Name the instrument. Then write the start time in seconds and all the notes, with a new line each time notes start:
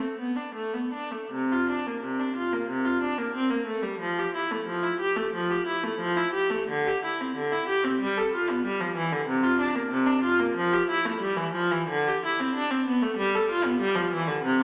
viola
0.00 A3
0.19 B3
0.36 D4
0.55 A3
0.74 B3
0.93 D4
1.12 A3
1.32 C3
1.52 F4
1.69 D4
1.87 A#3
2.03 C3
2.20 D4
2.36 F4
2.53 A#3
2.69 C3
2.85 F4
3.01 D4
3.19 A#3
3.35 C4
3.51 A#3
3.66 A3
3.83 G3
4.00 F3
4.18 G4
4.35 E4
4.52 A3
4.67 F3
4.83 E4
5.00 G4
5.16 A3
5.33 F3
5.51 G4
5.66 E4
5.83 A3
6.00 F3
6.16 E4
6.33 G4
6.51 A3
6.69 D3
6.87 G4
7.04 E4
7.21 C4
7.36 D3
7.52 E4
7.68 G4
7.84 C4
8.00 G3
8.18 A4
8.34 F4
8.51 B3
8.65 G3
8.81 F3
8.96 E3
9.12 D3
9.28 C3
9.43 F4
9.60 D4
9.76 A#3
9.91 C3
10.07 D4
10.23 F4
10.40 A#3
10.56 F3
10.73 G4
10.90 E4
11.05 A3
11.20 G3
11.37 E3
11.53 F3
11.72 E3
11.89 D3
12.08 G4
12.25 E4
12.40 C4
12.55 D4
12.71 C4
12.87 B3
13.02 A3
13.17 G3
13.35 A4
13.51 F4
13.66 B3
13.80 G3
13.96 F3
14.12 E3
14.28 D3
14.44 C3